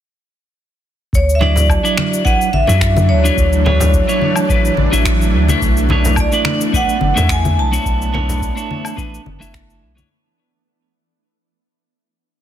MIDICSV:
0, 0, Header, 1, 6, 480
1, 0, Start_track
1, 0, Key_signature, 2, "major"
1, 0, Tempo, 560748
1, 970, Time_signature, 4, 2, 24, 8
1, 10628, End_track
2, 0, Start_track
2, 0, Title_t, "Vibraphone"
2, 0, Program_c, 0, 11
2, 985, Note_on_c, 0, 73, 82
2, 1157, Note_on_c, 0, 76, 67
2, 1167, Note_off_c, 0, 73, 0
2, 1212, Note_off_c, 0, 76, 0
2, 1222, Note_on_c, 0, 74, 90
2, 1924, Note_on_c, 0, 78, 97
2, 1957, Note_off_c, 0, 74, 0
2, 2167, Note_on_c, 0, 76, 95
2, 2175, Note_off_c, 0, 78, 0
2, 2644, Note_on_c, 0, 73, 74
2, 2663, Note_off_c, 0, 76, 0
2, 4053, Note_off_c, 0, 73, 0
2, 5309, Note_on_c, 0, 74, 77
2, 5787, Note_on_c, 0, 78, 93
2, 5794, Note_off_c, 0, 74, 0
2, 6263, Note_on_c, 0, 80, 102
2, 6273, Note_off_c, 0, 78, 0
2, 6499, Note_on_c, 0, 81, 97
2, 6504, Note_off_c, 0, 80, 0
2, 8380, Note_off_c, 0, 81, 0
2, 10628, End_track
3, 0, Start_track
3, 0, Title_t, "Clean electric guitar"
3, 0, Program_c, 1, 27
3, 1203, Note_on_c, 1, 54, 80
3, 1207, Note_on_c, 1, 62, 71
3, 1214, Note_on_c, 1, 64, 70
3, 1216, Note_on_c, 1, 74, 90
3, 1544, Note_off_c, 1, 54, 0
3, 1546, Note_off_c, 1, 62, 0
3, 1547, Note_off_c, 1, 64, 0
3, 1551, Note_off_c, 1, 74, 0
3, 1570, Note_on_c, 1, 54, 88
3, 1574, Note_on_c, 1, 62, 72
3, 1579, Note_on_c, 1, 64, 76
3, 1581, Note_on_c, 1, 74, 92
3, 1899, Note_off_c, 1, 54, 0
3, 1902, Note_off_c, 1, 62, 0
3, 1903, Note_off_c, 1, 64, 0
3, 1905, Note_off_c, 1, 74, 0
3, 1922, Note_on_c, 1, 54, 75
3, 1927, Note_on_c, 1, 62, 72
3, 1930, Note_on_c, 1, 64, 68
3, 1938, Note_on_c, 1, 71, 85
3, 2124, Note_off_c, 1, 54, 0
3, 2126, Note_off_c, 1, 62, 0
3, 2128, Note_off_c, 1, 64, 0
3, 2132, Note_off_c, 1, 71, 0
3, 2290, Note_on_c, 1, 54, 77
3, 2296, Note_on_c, 1, 62, 52
3, 2299, Note_on_c, 1, 64, 59
3, 2304, Note_on_c, 1, 76, 65
3, 2745, Note_off_c, 1, 54, 0
3, 2745, Note_off_c, 1, 62, 0
3, 2749, Note_off_c, 1, 64, 0
3, 2749, Note_off_c, 1, 76, 0
3, 2771, Note_on_c, 1, 54, 85
3, 2777, Note_on_c, 1, 62, 76
3, 2782, Note_on_c, 1, 64, 79
3, 2789, Note_on_c, 1, 73, 77
3, 3100, Note_off_c, 1, 54, 0
3, 3103, Note_off_c, 1, 62, 0
3, 3106, Note_off_c, 1, 64, 0
3, 3108, Note_off_c, 1, 73, 0
3, 3124, Note_on_c, 1, 54, 82
3, 3129, Note_on_c, 1, 62, 74
3, 3134, Note_on_c, 1, 64, 66
3, 3137, Note_on_c, 1, 73, 92
3, 3464, Note_off_c, 1, 54, 0
3, 3468, Note_off_c, 1, 62, 0
3, 3468, Note_off_c, 1, 64, 0
3, 3471, Note_off_c, 1, 73, 0
3, 3489, Note_on_c, 1, 54, 84
3, 3495, Note_on_c, 1, 62, 82
3, 3497, Note_on_c, 1, 64, 74
3, 3503, Note_on_c, 1, 73, 86
3, 3819, Note_off_c, 1, 54, 0
3, 3822, Note_off_c, 1, 62, 0
3, 3824, Note_off_c, 1, 64, 0
3, 3825, Note_off_c, 1, 73, 0
3, 3842, Note_on_c, 1, 54, 75
3, 3850, Note_on_c, 1, 62, 51
3, 3853, Note_on_c, 1, 64, 72
3, 3857, Note_on_c, 1, 71, 85
3, 4045, Note_off_c, 1, 54, 0
3, 4046, Note_off_c, 1, 62, 0
3, 4049, Note_off_c, 1, 64, 0
3, 4051, Note_off_c, 1, 71, 0
3, 4209, Note_on_c, 1, 54, 80
3, 4215, Note_on_c, 1, 62, 68
3, 4218, Note_on_c, 1, 64, 68
3, 4225, Note_on_c, 1, 76, 85
3, 4663, Note_off_c, 1, 54, 0
3, 4666, Note_off_c, 1, 62, 0
3, 4668, Note_off_c, 1, 64, 0
3, 4671, Note_off_c, 1, 76, 0
3, 4697, Note_on_c, 1, 57, 86
3, 4703, Note_on_c, 1, 62, 79
3, 4707, Note_on_c, 1, 64, 84
3, 4711, Note_on_c, 1, 73, 89
3, 5023, Note_off_c, 1, 57, 0
3, 5026, Note_off_c, 1, 62, 0
3, 5028, Note_off_c, 1, 64, 0
3, 5028, Note_off_c, 1, 73, 0
3, 5051, Note_on_c, 1, 57, 80
3, 5055, Note_on_c, 1, 62, 77
3, 5060, Note_on_c, 1, 64, 72
3, 5067, Note_on_c, 1, 73, 77
3, 5388, Note_off_c, 1, 57, 0
3, 5390, Note_off_c, 1, 62, 0
3, 5393, Note_off_c, 1, 64, 0
3, 5395, Note_off_c, 1, 73, 0
3, 5410, Note_on_c, 1, 57, 97
3, 5416, Note_on_c, 1, 62, 73
3, 5419, Note_on_c, 1, 64, 78
3, 5423, Note_on_c, 1, 74, 95
3, 5740, Note_off_c, 1, 57, 0
3, 5741, Note_off_c, 1, 62, 0
3, 5744, Note_off_c, 1, 64, 0
3, 5746, Note_off_c, 1, 74, 0
3, 5756, Note_on_c, 1, 57, 81
3, 5760, Note_on_c, 1, 62, 68
3, 5768, Note_on_c, 1, 64, 65
3, 5771, Note_on_c, 1, 71, 82
3, 5961, Note_off_c, 1, 57, 0
3, 5963, Note_off_c, 1, 62, 0
3, 5965, Note_off_c, 1, 64, 0
3, 5968, Note_off_c, 1, 71, 0
3, 6123, Note_on_c, 1, 57, 74
3, 6127, Note_on_c, 1, 62, 66
3, 6134, Note_on_c, 1, 64, 62
3, 6136, Note_on_c, 1, 76, 86
3, 6580, Note_off_c, 1, 57, 0
3, 6582, Note_off_c, 1, 62, 0
3, 6584, Note_off_c, 1, 64, 0
3, 6586, Note_off_c, 1, 76, 0
3, 6604, Note_on_c, 1, 57, 88
3, 6610, Note_on_c, 1, 62, 72
3, 6613, Note_on_c, 1, 64, 80
3, 6619, Note_on_c, 1, 73, 94
3, 6937, Note_off_c, 1, 57, 0
3, 6938, Note_off_c, 1, 62, 0
3, 6941, Note_off_c, 1, 64, 0
3, 6944, Note_off_c, 1, 73, 0
3, 6955, Note_on_c, 1, 57, 84
3, 6962, Note_on_c, 1, 62, 78
3, 6964, Note_on_c, 1, 64, 67
3, 6970, Note_on_c, 1, 73, 98
3, 7300, Note_off_c, 1, 57, 0
3, 7303, Note_off_c, 1, 64, 0
3, 7304, Note_off_c, 1, 62, 0
3, 7307, Note_off_c, 1, 73, 0
3, 7322, Note_on_c, 1, 57, 95
3, 7326, Note_on_c, 1, 62, 79
3, 7337, Note_on_c, 1, 73, 97
3, 7338, Note_on_c, 1, 64, 75
3, 7655, Note_off_c, 1, 57, 0
3, 7657, Note_off_c, 1, 62, 0
3, 7662, Note_off_c, 1, 64, 0
3, 7663, Note_off_c, 1, 73, 0
3, 7672, Note_on_c, 1, 57, 83
3, 7679, Note_on_c, 1, 62, 81
3, 7684, Note_on_c, 1, 64, 61
3, 7690, Note_on_c, 1, 71, 89
3, 7879, Note_off_c, 1, 57, 0
3, 7883, Note_off_c, 1, 62, 0
3, 7884, Note_off_c, 1, 64, 0
3, 7888, Note_off_c, 1, 71, 0
3, 8045, Note_on_c, 1, 57, 78
3, 8050, Note_on_c, 1, 62, 70
3, 8052, Note_on_c, 1, 64, 71
3, 8056, Note_on_c, 1, 76, 86
3, 8501, Note_off_c, 1, 57, 0
3, 8502, Note_off_c, 1, 62, 0
3, 8504, Note_off_c, 1, 64, 0
3, 8506, Note_off_c, 1, 76, 0
3, 8519, Note_on_c, 1, 57, 87
3, 8523, Note_on_c, 1, 62, 73
3, 8531, Note_on_c, 1, 64, 71
3, 8533, Note_on_c, 1, 73, 97
3, 8627, Note_off_c, 1, 57, 0
3, 8630, Note_off_c, 1, 62, 0
3, 8631, Note_off_c, 1, 64, 0
3, 8634, Note_off_c, 1, 73, 0
3, 10628, End_track
4, 0, Start_track
4, 0, Title_t, "Ambient pad"
4, 0, Program_c, 2, 92
4, 966, Note_on_c, 2, 52, 73
4, 966, Note_on_c, 2, 54, 65
4, 967, Note_on_c, 2, 57, 70
4, 971, Note_on_c, 2, 62, 89
4, 4774, Note_off_c, 2, 54, 0
4, 4801, Note_on_c, 2, 59, 73
4, 8612, Note_off_c, 2, 59, 0
4, 8614, Note_off_c, 2, 52, 0
4, 8615, Note_off_c, 2, 57, 0
4, 8616, Note_off_c, 2, 62, 0
4, 10628, End_track
5, 0, Start_track
5, 0, Title_t, "Sub bass"
5, 0, Program_c, 3, 38
5, 970, Note_on_c, 3, 38, 91
5, 1518, Note_off_c, 3, 38, 0
5, 1929, Note_on_c, 3, 33, 81
5, 2021, Note_off_c, 3, 33, 0
5, 2167, Note_on_c, 3, 33, 78
5, 2259, Note_off_c, 3, 33, 0
5, 2303, Note_on_c, 3, 42, 92
5, 2655, Note_on_c, 3, 38, 77
5, 2668, Note_off_c, 3, 42, 0
5, 2828, Note_off_c, 3, 38, 0
5, 2889, Note_on_c, 3, 38, 95
5, 3438, Note_off_c, 3, 38, 0
5, 3847, Note_on_c, 3, 33, 87
5, 4024, Note_off_c, 3, 33, 0
5, 4086, Note_on_c, 3, 33, 93
5, 4179, Note_off_c, 3, 33, 0
5, 4220, Note_on_c, 3, 33, 92
5, 4562, Note_on_c, 3, 38, 92
5, 4575, Note_off_c, 3, 33, 0
5, 4741, Note_off_c, 3, 38, 0
5, 4807, Note_on_c, 3, 35, 93
5, 5357, Note_off_c, 3, 35, 0
5, 5764, Note_on_c, 3, 33, 76
5, 5858, Note_off_c, 3, 33, 0
5, 6008, Note_on_c, 3, 30, 84
5, 6100, Note_off_c, 3, 30, 0
5, 6134, Note_on_c, 3, 40, 96
5, 6486, Note_on_c, 3, 35, 84
5, 6499, Note_off_c, 3, 40, 0
5, 6663, Note_off_c, 3, 35, 0
5, 6724, Note_on_c, 3, 35, 104
5, 7276, Note_off_c, 3, 35, 0
5, 7684, Note_on_c, 3, 33, 89
5, 7862, Note_off_c, 3, 33, 0
5, 7935, Note_on_c, 3, 30, 94
5, 8024, Note_off_c, 3, 30, 0
5, 8063, Note_on_c, 3, 30, 89
5, 8411, Note_on_c, 3, 35, 100
5, 8424, Note_off_c, 3, 30, 0
5, 8586, Note_off_c, 3, 35, 0
5, 10628, End_track
6, 0, Start_track
6, 0, Title_t, "Drums"
6, 967, Note_on_c, 9, 36, 90
6, 979, Note_on_c, 9, 69, 48
6, 1052, Note_off_c, 9, 36, 0
6, 1065, Note_off_c, 9, 69, 0
6, 1107, Note_on_c, 9, 69, 28
6, 1193, Note_off_c, 9, 69, 0
6, 1206, Note_on_c, 9, 64, 85
6, 1208, Note_on_c, 9, 63, 61
6, 1291, Note_off_c, 9, 64, 0
6, 1293, Note_off_c, 9, 63, 0
6, 1334, Note_on_c, 9, 64, 79
6, 1346, Note_on_c, 9, 69, 64
6, 1420, Note_off_c, 9, 64, 0
6, 1432, Note_off_c, 9, 69, 0
6, 1447, Note_on_c, 9, 36, 95
6, 1452, Note_on_c, 9, 77, 58
6, 1460, Note_on_c, 9, 69, 51
6, 1533, Note_off_c, 9, 36, 0
6, 1537, Note_off_c, 9, 77, 0
6, 1545, Note_off_c, 9, 69, 0
6, 1585, Note_on_c, 9, 69, 31
6, 1670, Note_off_c, 9, 69, 0
6, 1690, Note_on_c, 9, 26, 71
6, 1696, Note_on_c, 9, 63, 61
6, 1776, Note_off_c, 9, 26, 0
6, 1782, Note_off_c, 9, 63, 0
6, 1827, Note_on_c, 9, 69, 61
6, 1913, Note_off_c, 9, 69, 0
6, 1928, Note_on_c, 9, 36, 96
6, 1938, Note_on_c, 9, 69, 48
6, 2013, Note_off_c, 9, 36, 0
6, 2024, Note_off_c, 9, 69, 0
6, 2065, Note_on_c, 9, 69, 28
6, 2150, Note_off_c, 9, 69, 0
6, 2170, Note_on_c, 9, 63, 59
6, 2255, Note_off_c, 9, 63, 0
6, 2289, Note_on_c, 9, 64, 82
6, 2306, Note_on_c, 9, 69, 58
6, 2374, Note_off_c, 9, 64, 0
6, 2391, Note_off_c, 9, 69, 0
6, 2407, Note_on_c, 9, 36, 91
6, 2408, Note_on_c, 9, 26, 71
6, 2415, Note_on_c, 9, 69, 52
6, 2493, Note_off_c, 9, 26, 0
6, 2493, Note_off_c, 9, 36, 0
6, 2501, Note_off_c, 9, 69, 0
6, 2538, Note_on_c, 9, 63, 97
6, 2546, Note_on_c, 9, 69, 33
6, 2624, Note_off_c, 9, 63, 0
6, 2631, Note_off_c, 9, 69, 0
6, 2785, Note_on_c, 9, 69, 62
6, 2871, Note_off_c, 9, 69, 0
6, 2887, Note_on_c, 9, 36, 98
6, 2893, Note_on_c, 9, 69, 53
6, 2973, Note_off_c, 9, 36, 0
6, 2979, Note_off_c, 9, 69, 0
6, 3019, Note_on_c, 9, 69, 29
6, 3105, Note_off_c, 9, 69, 0
6, 3130, Note_on_c, 9, 63, 59
6, 3134, Note_on_c, 9, 64, 95
6, 3216, Note_off_c, 9, 63, 0
6, 3220, Note_off_c, 9, 64, 0
6, 3256, Note_on_c, 9, 64, 99
6, 3261, Note_on_c, 9, 69, 67
6, 3341, Note_off_c, 9, 64, 0
6, 3347, Note_off_c, 9, 69, 0
6, 3367, Note_on_c, 9, 36, 104
6, 3371, Note_on_c, 9, 69, 53
6, 3453, Note_off_c, 9, 36, 0
6, 3457, Note_off_c, 9, 69, 0
6, 3501, Note_on_c, 9, 69, 33
6, 3586, Note_off_c, 9, 69, 0
6, 3609, Note_on_c, 9, 63, 59
6, 3695, Note_off_c, 9, 63, 0
6, 3729, Note_on_c, 9, 77, 56
6, 3736, Note_on_c, 9, 69, 64
6, 3814, Note_off_c, 9, 77, 0
6, 3822, Note_off_c, 9, 69, 0
6, 3847, Note_on_c, 9, 36, 92
6, 3852, Note_on_c, 9, 69, 49
6, 3932, Note_off_c, 9, 36, 0
6, 3938, Note_off_c, 9, 69, 0
6, 3980, Note_on_c, 9, 69, 31
6, 4066, Note_off_c, 9, 69, 0
6, 4085, Note_on_c, 9, 63, 68
6, 4170, Note_off_c, 9, 63, 0
6, 4222, Note_on_c, 9, 69, 61
6, 4308, Note_off_c, 9, 69, 0
6, 4326, Note_on_c, 9, 36, 100
6, 4327, Note_on_c, 9, 26, 72
6, 4335, Note_on_c, 9, 69, 55
6, 4412, Note_off_c, 9, 36, 0
6, 4413, Note_off_c, 9, 26, 0
6, 4420, Note_off_c, 9, 69, 0
6, 4465, Note_on_c, 9, 69, 34
6, 4550, Note_off_c, 9, 69, 0
6, 4695, Note_on_c, 9, 63, 87
6, 4702, Note_on_c, 9, 69, 64
6, 4780, Note_off_c, 9, 63, 0
6, 4788, Note_off_c, 9, 69, 0
6, 4806, Note_on_c, 9, 36, 109
6, 4811, Note_on_c, 9, 69, 51
6, 4892, Note_off_c, 9, 36, 0
6, 4897, Note_off_c, 9, 69, 0
6, 4939, Note_on_c, 9, 69, 31
6, 5024, Note_off_c, 9, 69, 0
6, 5040, Note_on_c, 9, 63, 64
6, 5049, Note_on_c, 9, 64, 98
6, 5126, Note_off_c, 9, 63, 0
6, 5135, Note_off_c, 9, 64, 0
6, 5177, Note_on_c, 9, 69, 66
6, 5182, Note_on_c, 9, 64, 87
6, 5263, Note_off_c, 9, 69, 0
6, 5267, Note_off_c, 9, 64, 0
6, 5275, Note_on_c, 9, 77, 59
6, 5283, Note_on_c, 9, 69, 56
6, 5285, Note_on_c, 9, 36, 107
6, 5361, Note_off_c, 9, 77, 0
6, 5368, Note_off_c, 9, 69, 0
6, 5371, Note_off_c, 9, 36, 0
6, 5411, Note_on_c, 9, 69, 34
6, 5497, Note_off_c, 9, 69, 0
6, 5520, Note_on_c, 9, 26, 80
6, 5522, Note_on_c, 9, 63, 65
6, 5605, Note_off_c, 9, 26, 0
6, 5608, Note_off_c, 9, 63, 0
6, 5658, Note_on_c, 9, 69, 65
6, 5744, Note_off_c, 9, 69, 0
6, 5765, Note_on_c, 9, 36, 99
6, 5773, Note_on_c, 9, 69, 52
6, 5851, Note_off_c, 9, 36, 0
6, 5858, Note_off_c, 9, 69, 0
6, 5898, Note_on_c, 9, 69, 31
6, 5984, Note_off_c, 9, 69, 0
6, 5999, Note_on_c, 9, 63, 69
6, 6084, Note_off_c, 9, 63, 0
6, 6140, Note_on_c, 9, 69, 63
6, 6141, Note_on_c, 9, 64, 94
6, 6225, Note_off_c, 9, 69, 0
6, 6226, Note_off_c, 9, 64, 0
6, 6243, Note_on_c, 9, 26, 75
6, 6245, Note_on_c, 9, 36, 108
6, 6251, Note_on_c, 9, 69, 54
6, 6328, Note_off_c, 9, 26, 0
6, 6330, Note_off_c, 9, 36, 0
6, 6336, Note_off_c, 9, 69, 0
6, 6377, Note_on_c, 9, 63, 94
6, 6377, Note_on_c, 9, 69, 35
6, 6462, Note_off_c, 9, 69, 0
6, 6463, Note_off_c, 9, 63, 0
6, 6620, Note_on_c, 9, 69, 66
6, 6706, Note_off_c, 9, 69, 0
6, 6724, Note_on_c, 9, 36, 104
6, 6730, Note_on_c, 9, 69, 54
6, 6810, Note_off_c, 9, 36, 0
6, 6816, Note_off_c, 9, 69, 0
6, 6862, Note_on_c, 9, 69, 30
6, 6948, Note_off_c, 9, 69, 0
6, 6967, Note_on_c, 9, 63, 64
6, 6972, Note_on_c, 9, 64, 87
6, 7052, Note_off_c, 9, 63, 0
6, 7057, Note_off_c, 9, 64, 0
6, 7098, Note_on_c, 9, 64, 84
6, 7101, Note_on_c, 9, 69, 64
6, 7183, Note_off_c, 9, 64, 0
6, 7187, Note_off_c, 9, 69, 0
6, 7205, Note_on_c, 9, 36, 101
6, 7212, Note_on_c, 9, 69, 57
6, 7290, Note_off_c, 9, 36, 0
6, 7298, Note_off_c, 9, 69, 0
6, 7339, Note_on_c, 9, 69, 34
6, 7425, Note_off_c, 9, 69, 0
6, 7453, Note_on_c, 9, 63, 68
6, 7538, Note_off_c, 9, 63, 0
6, 7574, Note_on_c, 9, 77, 55
6, 7581, Note_on_c, 9, 69, 63
6, 7659, Note_off_c, 9, 77, 0
6, 7667, Note_off_c, 9, 69, 0
6, 7685, Note_on_c, 9, 36, 105
6, 7691, Note_on_c, 9, 69, 53
6, 7770, Note_off_c, 9, 36, 0
6, 7776, Note_off_c, 9, 69, 0
6, 7826, Note_on_c, 9, 69, 33
6, 7912, Note_off_c, 9, 69, 0
6, 7927, Note_on_c, 9, 63, 72
6, 8013, Note_off_c, 9, 63, 0
6, 8066, Note_on_c, 9, 69, 63
6, 8152, Note_off_c, 9, 69, 0
6, 8166, Note_on_c, 9, 36, 101
6, 8167, Note_on_c, 9, 26, 74
6, 8175, Note_on_c, 9, 69, 55
6, 8251, Note_off_c, 9, 36, 0
6, 8253, Note_off_c, 9, 26, 0
6, 8261, Note_off_c, 9, 69, 0
6, 8303, Note_on_c, 9, 69, 35
6, 8388, Note_off_c, 9, 69, 0
6, 8544, Note_on_c, 9, 63, 84
6, 8545, Note_on_c, 9, 69, 64
6, 8630, Note_off_c, 9, 63, 0
6, 8630, Note_off_c, 9, 69, 0
6, 10628, End_track
0, 0, End_of_file